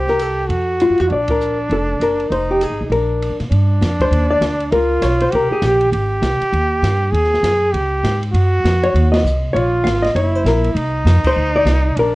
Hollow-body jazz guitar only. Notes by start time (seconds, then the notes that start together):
0.09 A#4
0.22 A4
0.82 F4
1.00 F#4
1.12 D5
1.31 A#4
1.73 A4
2.02 A#4
2.32 C5
2.51 G4
2.63 G#4
2.92 A#4
4.02 C5
4.31 D5
4.73 A#4
5.02 C#5
5.22 C5
5.35 A#4
5.52 G#4
5.65 G4
8.83 C#5
9.12 D#5
9.53 C#5
9.84 F5
10.03 D#5
10.16 C#5
10.35 C5
10.47 A#4
11.27 C5
11.56 D5
11.99 A#4